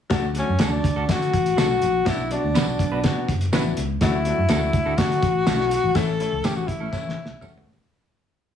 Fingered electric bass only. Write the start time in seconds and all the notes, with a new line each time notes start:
0.11 D2
0.49 F#2
0.61 D2
0.84 D2
1.09 D3
1.34 A1
1.59 B1
1.82 A#1
2.06 B1
2.44 D2
2.56 B1
2.80 B1
3.04 B2
3.29 F#1
3.52 A1
3.77 C#2
4.01 D2
4.38 F#2
4.50 D2
4.74 D2
4.98 D3
5.23 A1
5.47 B1
5.84 A1
5.95 A1
6.32 C#2
6.45 A1
6.68 A1
6.93 A2
7.05 A1
7.30 B1
7.42 muted fingered electric bass stroke
7.54 A1
7.66 A2